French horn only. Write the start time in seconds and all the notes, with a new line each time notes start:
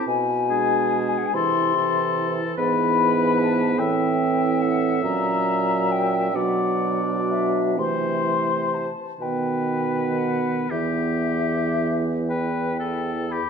0.49 G#3
1.33 E3
1.75 E3
2.58 E3
3.79 E3
5.03 F#3
6.33 F#3
7.78 E3
9.20 D#3
10.70 E3